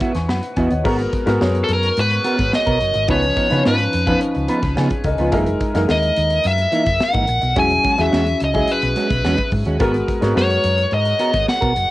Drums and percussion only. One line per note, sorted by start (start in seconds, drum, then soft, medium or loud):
0.00 kick medium
0.00 closed hi-hat medium
0.15 snare soft
0.15 closed hi-hat medium
0.29 snare loud
0.43 closed hi-hat medium
0.56 kick medium
0.56 closed hi-hat medium
0.71 closed hi-hat soft
0.85 kick loud
0.85 crash medium
0.99 closed hi-hat soft
1.13 kick medium
1.13 closed hi-hat medium
1.27 snare soft
1.27 closed hi-hat medium
1.41 snare loud
1.55 closed hi-hat soft
1.69 closed hi-hat medium
1.83 closed hi-hat medium
1.97 closed hi-hat medium
2.11 closed hi-hat medium
2.24 closed hi-hat medium
2.39 kick loud
2.39 snare soft
2.39 closed hi-hat medium
2.53 snare loud
2.67 kick medium
2.67 closed hi-hat medium
2.81 closed hi-hat medium
2.94 closed hi-hat soft
3.08 kick loud
3.08 closed hi-hat medium
3.22 closed hi-hat soft
3.37 kick loud
3.37 closed hi-hat medium
3.51 snare soft
3.51 closed hi-hat medium
3.66 snare medium
3.79 closed hi-hat soft
3.93 closed hi-hat medium
4.07 kick loud
4.07 closed hi-hat medium
4.21 closed hi-hat medium
4.35 closed hi-hat medium
4.48 closed hi-hat medium
4.63 kick medium
4.63 snare soft
4.63 closed hi-hat medium
4.77 snare loud
4.90 kick medium
4.90 closed hi-hat medium
5.04 kick medium
5.04 closed hi-hat medium
5.18 closed hi-hat soft
5.32 kick loud
5.32 closed hi-hat medium
5.46 closed hi-hat soft
5.60 kick medium
5.60 closed hi-hat medium
5.75 snare soft
5.75 closed hi-hat medium
5.89 snare loud
6.03 closed hi-hat soft
6.16 closed hi-hat medium
6.30 closed hi-hat medium
6.44 closed hi-hat medium
6.58 closed hi-hat medium
6.72 closed hi-hat medium
6.86 kick medium
6.86 snare soft
6.86 closed hi-hat medium
7.01 snare loud
7.13 kick loud
7.13 closed hi-hat soft
7.27 closed hi-hat medium
7.42 closed hi-hat soft
7.56 kick loud
7.56 closed hi-hat medium
7.70 closed hi-hat soft
7.84 kick medium
7.84 closed hi-hat medium
7.98 snare soft
7.98 closed hi-hat medium
8.13 snare loud
8.27 closed hi-hat soft
8.40 closed hi-hat medium
8.54 kick loud
8.54 closed hi-hat medium
8.68 closed hi-hat medium
8.82 closed hi-hat medium
8.96 closed hi-hat medium
9.10 kick medium
9.10 snare soft
9.10 closed hi-hat medium
9.25 snare loud
9.38 kick medium
9.38 closed hi-hat medium
9.51 kick medium
9.51 open hi-hat medium
9.65 closed hi-hat soft
9.80 kick loud
9.80 closed hi-hat medium
9.94 closed hi-hat soft
10.08 kick medium
10.08 closed hi-hat medium
10.22 snare soft
10.22 closed hi-hat medium
10.37 snare loud
10.50 closed hi-hat medium
10.64 closed hi-hat medium
10.78 closed hi-hat medium
10.91 closed hi-hat medium
11.05 closed hi-hat medium
11.19 closed hi-hat medium
11.34 kick medium
11.34 snare soft
11.34 closed hi-hat medium
11.48 snare loud
11.62 kick medium
11.62 closed hi-hat medium
11.76 closed hi-hat medium